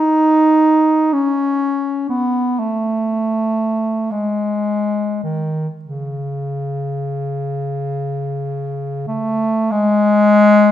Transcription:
Already playing: D#4
1.13 C#4
2.09 B3
2.59 A3
4.11 G#3
5.23 D#3
5.85 C#3
9.08 A3
9.71 G#3

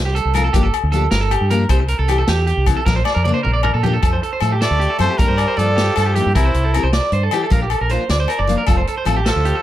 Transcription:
Already playing: C2
0.05 G4
0.15 A4, closed hi-hat
0.25 C2
0.34 F3 A3 C4 F4 A#4, closed hi-hat, low agogo
0.44 A4
0.53 G1 F3 A#3 D4 G4, kick, closed hi-hat
0.63 A4
0.74 closed hi-hat, low agogo
0.83 D2
0.92 F3 A#3 D4 G4 A4, closed hi-hat
1.11 G1 A#4, snare, closed hi-hat
1.21 A4
1.31 G4, closed hi-hat, low agogo
1.41 G2
1.50 F3 A#3 D4 G4 A#4, closed hi-hat
1.69 C2 C4 E4 G4 C5, muted steel-string acoustic guitar stroke, kick, closed hi-hat, low agogo
1.80 muted clean electric guitar stroke
1.88 A#4, closed hi-hat
1.99 C2 A4
2.08 E3 C4 E4 G4, closed hi-hat, low agogo
2.18 A4
2.27 E2 G4, snare, closed hi-hat
2.47 G4, closed hi-hat
2.57 C2
2.66 E3 C4 E4 G4, kick, closed hi-hat, low agogo
2.77 A4
2.86 A#1 F3 D4 A#4, muted steel-string acoustic guitar stroke, kick, snare
2.96 C5
3.05 D5, snare, low agogo
3.15 F2 A#4
3.24 A#3 D5, muted steel-string acoustic guitar stroke, high tom
3.29 D4
3.34 C5
3.43 A#1 A#4, mid tom
3.53 D5
3.63 A#4, mid tom, low agogo
3.74 A#2 A4
3.83 F3 A#3 G4, floor tom
3.87 D4
3.93 A4
4.02 F2 F3 A3 C4 A4, kick, closed hi-hat, low agogo
4.13 C5
4.23 A4, closed hi-hat
4.33 C5
4.41 A2 F3 A3 A4, closed hi-hat, low agogo
4.45 C4
4.52 G4
4.61 A3 A4 D5, snare, closed hi-hat
4.71 D2
4.80 G4, closed hi-hat
4.90 A4
4.99 F#2 F3 A3 C4 C5, closed hi-hat, low agogo
5.10 G4
5.18 G2 F3 G3 A#3 D4 A#4, kick, closed hi-hat
5.28 G2 C5
5.37 D5, closed hi-hat, low agogo
5.48 C5
5.57 G2 F3 A#3 D4 A4 D5, closed hi-hat
5.76 G4, snare, closed hi-hat
5.96 G2 A4, snare, closed hi-hat, low agogo
6.06 G4
6.15 E3 F3 A#3 D4 G4, closed hi-hat
6.26 G2
6.35 C2 C3 E3 C4 E4 G4 A#4, kick, closed hi-hat, low agogo
6.45 C5
6.54 C2, closed hi-hat
6.64 A4
6.74 E3 C4 E4 A#4, closed hi-hat, low agogo
6.78 G4
6.83 C2 C5
6.93 D5, snare, closed hi-hat
7.12 G2 C5, closed hi-hat
7.23 A4
7.31 E3 C4 E4 G4, closed hi-hat, low agogo
7.35 G4
7.44 A4
7.50 A#1 F3 A#3 D4 F4 A#4, kick, closed hi-hat
7.62 G4
7.70 A4, closed hi-hat, low agogo
7.81 A#1 A#4
7.90 F3 A#3 D4 F4 C5, closed hi-hat
8.09 D2 D5, snare, closed hi-hat
8.20 C5
8.28 A#4, closed hi-hat, low agogo
8.39 F#1 D5
8.47 F3 A#3 D4 F4, closed hi-hat
8.58 A#4
8.67 F1 F3 A3 C4 F4 A4, kick, closed hi-hat, low agogo
8.77 C5
8.87 A4, closed hi-hat
8.98 C5
9.05 A1 F3 A3 C4 F4 A4, closed hi-hat, low agogo
9.16 G4
9.26 F3 A4, snare, closed hi-hat
9.36 D2
9.45 G4, closed hi-hat
9.55 A4

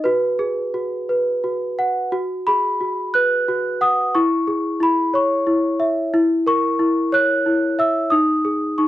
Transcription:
0.04 F#4 B4
0.39 G#4
0.74 F#4
1.09 B4
1.44 F#4
1.79 F#5
2.12 F#4
2.47 G#4 B5
2.81 F#4
3.14 B4 F#6
3.48 F#4
3.81 F#5 D#6
4.15 E4 C#6
4.47 G#4
4.80 E4 B5
5.14 C#5 C#6
5.47 E4
5.80 E5
6.14 E4
6.47 A#4 C#6
6.79 E4
7.12 C#5 F#6
7.46 E4
7.79 E5 E6
8.10 D#4 D#6
8.45 G#4
8.78 D#4 C#6

